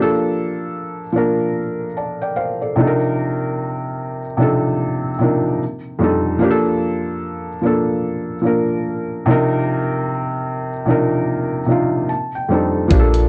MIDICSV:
0, 0, Header, 1, 4, 480
1, 0, Start_track
1, 0, Key_signature, -2, "major"
1, 0, Tempo, 810811
1, 1881, Time_signature, 4, 2, 24, 8
1, 7866, End_track
2, 0, Start_track
2, 0, Title_t, "Felt piano"
2, 0, Program_c, 0, 0
2, 0, Note_on_c, 0, 53, 98
2, 0, Note_on_c, 0, 58, 89
2, 0, Note_on_c, 0, 62, 88
2, 11, Note_on_c, 0, 69, 108
2, 62, Control_c, 0, 64, 127
2, 588, Note_off_c, 0, 53, 0
2, 592, Note_off_c, 0, 58, 0
2, 598, Note_off_c, 0, 62, 0
2, 622, Note_off_c, 0, 69, 0
2, 665, Note_on_c, 0, 53, 79
2, 675, Note_on_c, 0, 58, 60
2, 685, Note_on_c, 0, 62, 75
2, 695, Note_on_c, 0, 70, 82
2, 928, Note_off_c, 0, 70, 0
2, 1097, Note_off_c, 0, 53, 0
2, 1102, Note_off_c, 0, 58, 0
2, 1107, Note_off_c, 0, 62, 0
2, 1164, Note_on_c, 0, 81, 51
2, 1168, Note_on_c, 0, 74, 46
2, 1298, Note_off_c, 0, 81, 0
2, 1300, Note_off_c, 0, 74, 0
2, 1312, Note_on_c, 0, 79, 64
2, 1315, Note_on_c, 0, 74, 55
2, 1398, Note_on_c, 0, 77, 70
2, 1401, Note_off_c, 0, 79, 0
2, 1401, Note_on_c, 0, 72, 52
2, 1403, Note_off_c, 0, 74, 0
2, 1535, Note_off_c, 0, 77, 0
2, 1536, Note_off_c, 0, 72, 0
2, 1549, Note_on_c, 0, 74, 53
2, 1553, Note_on_c, 0, 69, 45
2, 1633, Note_on_c, 0, 48, 78
2, 1640, Note_on_c, 0, 53, 69
2, 1647, Note_on_c, 0, 62, 76
2, 1650, Control_c, 0, 64, 0
2, 1653, Note_off_c, 0, 69, 0
2, 1655, Note_on_c, 0, 63, 80
2, 1662, Note_on_c, 0, 69, 74
2, 1698, Note_off_c, 0, 69, 0
2, 1700, Note_on_c, 0, 70, 89
2, 1754, Control_c, 0, 64, 127
2, 1774, Note_off_c, 0, 74, 0
2, 2478, Note_off_c, 0, 48, 0
2, 2481, Note_off_c, 0, 53, 0
2, 2485, Note_off_c, 0, 62, 0
2, 2488, Note_off_c, 0, 63, 0
2, 2511, Note_off_c, 0, 70, 0
2, 2587, Note_on_c, 0, 48, 78
2, 2595, Note_on_c, 0, 53, 71
2, 2604, Note_on_c, 0, 62, 75
2, 2611, Note_on_c, 0, 63, 65
2, 2617, Note_on_c, 0, 69, 92
2, 3018, Note_off_c, 0, 48, 0
2, 3022, Note_off_c, 0, 53, 0
2, 3026, Note_off_c, 0, 62, 0
2, 3030, Note_off_c, 0, 63, 0
2, 3033, Note_off_c, 0, 69, 0
2, 3070, Note_on_c, 0, 48, 68
2, 3078, Note_on_c, 0, 53, 67
2, 3085, Note_on_c, 0, 62, 65
2, 3092, Note_on_c, 0, 63, 62
2, 3100, Note_on_c, 0, 70, 70
2, 3315, Note_off_c, 0, 48, 0
2, 3320, Note_off_c, 0, 53, 0
2, 3323, Note_off_c, 0, 62, 0
2, 3327, Note_off_c, 0, 63, 0
2, 3329, Control_c, 0, 64, 0
2, 3331, Note_off_c, 0, 70, 0
2, 3416, Control_c, 0, 64, 127
2, 3545, Note_on_c, 0, 41, 75
2, 3554, Note_on_c, 0, 55, 65
2, 3560, Note_on_c, 0, 62, 62
2, 3568, Note_on_c, 0, 63, 69
2, 3576, Note_on_c, 0, 69, 84
2, 3765, Note_off_c, 0, 41, 0
2, 3769, Note_off_c, 0, 55, 0
2, 3773, Note_off_c, 0, 62, 0
2, 3777, Note_off_c, 0, 63, 0
2, 3780, Note_off_c, 0, 69, 0
2, 3783, Note_on_c, 0, 53, 95
2, 3794, Note_on_c, 0, 58, 95
2, 3804, Note_on_c, 0, 62, 83
2, 3808, Control_c, 0, 64, 0
2, 3814, Note_on_c, 0, 67, 94
2, 3852, Note_on_c, 0, 69, 109
2, 3853, Note_off_c, 0, 67, 0
2, 3902, Control_c, 0, 64, 127
2, 4428, Note_off_c, 0, 53, 0
2, 4433, Note_off_c, 0, 58, 0
2, 4438, Note_off_c, 0, 62, 0
2, 4462, Note_off_c, 0, 69, 0
2, 4509, Note_on_c, 0, 53, 70
2, 4519, Note_on_c, 0, 58, 73
2, 4530, Note_on_c, 0, 62, 75
2, 4539, Note_on_c, 0, 69, 86
2, 4939, Note_off_c, 0, 53, 0
2, 4944, Note_off_c, 0, 58, 0
2, 4949, Note_off_c, 0, 62, 0
2, 4954, Note_off_c, 0, 69, 0
2, 4984, Note_on_c, 0, 53, 72
2, 4994, Note_on_c, 0, 58, 61
2, 5004, Note_on_c, 0, 62, 66
2, 5014, Note_on_c, 0, 70, 82
2, 5473, Note_off_c, 0, 53, 0
2, 5478, Note_off_c, 0, 58, 0
2, 5480, Note_on_c, 0, 48, 89
2, 5483, Note_off_c, 0, 62, 0
2, 5487, Note_on_c, 0, 53, 69
2, 5488, Note_off_c, 0, 70, 0
2, 5490, Control_c, 0, 64, 0
2, 5495, Note_on_c, 0, 62, 73
2, 5502, Note_on_c, 0, 63, 76
2, 5509, Note_on_c, 0, 70, 98
2, 5579, Control_c, 0, 64, 127
2, 6321, Note_off_c, 0, 48, 0
2, 6325, Note_off_c, 0, 53, 0
2, 6328, Note_off_c, 0, 62, 0
2, 6332, Note_off_c, 0, 63, 0
2, 6336, Note_off_c, 0, 70, 0
2, 6425, Note_on_c, 0, 48, 71
2, 6434, Note_on_c, 0, 53, 75
2, 6441, Note_on_c, 0, 62, 71
2, 6449, Note_on_c, 0, 63, 72
2, 6455, Note_on_c, 0, 70, 82
2, 6857, Note_off_c, 0, 48, 0
2, 6861, Note_off_c, 0, 53, 0
2, 6865, Note_off_c, 0, 62, 0
2, 6869, Note_off_c, 0, 63, 0
2, 6872, Note_off_c, 0, 70, 0
2, 6901, Note_on_c, 0, 48, 65
2, 6909, Note_on_c, 0, 53, 60
2, 6917, Note_on_c, 0, 62, 62
2, 6925, Note_on_c, 0, 63, 65
2, 6932, Note_on_c, 0, 65, 80
2, 7151, Note_off_c, 0, 48, 0
2, 7155, Note_off_c, 0, 53, 0
2, 7158, Note_on_c, 0, 81, 68
2, 7159, Note_off_c, 0, 62, 0
2, 7163, Note_off_c, 0, 63, 0
2, 7167, Note_off_c, 0, 65, 0
2, 7169, Control_c, 0, 64, 0
2, 7277, Control_c, 0, 64, 127
2, 7292, Note_off_c, 0, 81, 0
2, 7312, Note_on_c, 0, 79, 64
2, 7391, Note_on_c, 0, 41, 71
2, 7399, Note_off_c, 0, 79, 0
2, 7399, Note_on_c, 0, 55, 70
2, 7407, Note_on_c, 0, 62, 68
2, 7407, Note_on_c, 0, 72, 65
2, 7415, Note_on_c, 0, 63, 65
2, 7422, Note_on_c, 0, 69, 75
2, 7608, Note_off_c, 0, 41, 0
2, 7612, Note_off_c, 0, 55, 0
2, 7616, Note_off_c, 0, 62, 0
2, 7620, Note_off_c, 0, 63, 0
2, 7623, Note_off_c, 0, 69, 0
2, 7624, Note_on_c, 0, 53, 97
2, 7627, Note_off_c, 0, 72, 0
2, 7634, Note_on_c, 0, 58, 88
2, 7644, Note_on_c, 0, 62, 92
2, 7648, Control_c, 0, 64, 0
2, 7655, Note_on_c, 0, 67, 76
2, 7693, Note_on_c, 0, 69, 104
2, 7694, Note_off_c, 0, 67, 0
2, 7744, Control_c, 0, 64, 127
2, 7866, Note_off_c, 0, 53, 0
2, 7866, Note_off_c, 0, 58, 0
2, 7866, Note_off_c, 0, 62, 0
2, 7866, Note_off_c, 0, 69, 0
2, 7866, End_track
3, 0, Start_track
3, 0, Title_t, "Analog synth bass"
3, 0, Program_c, 1, 38
3, 7642, Note_on_c, 1, 34, 102
3, 7866, Note_off_c, 1, 34, 0
3, 7866, End_track
4, 0, Start_track
4, 0, Title_t, "Drums"
4, 7640, Note_on_c, 9, 42, 66
4, 7641, Note_on_c, 9, 36, 104
4, 7699, Note_off_c, 9, 42, 0
4, 7700, Note_off_c, 9, 36, 0
4, 7778, Note_on_c, 9, 42, 41
4, 7837, Note_off_c, 9, 42, 0
4, 7866, End_track
0, 0, End_of_file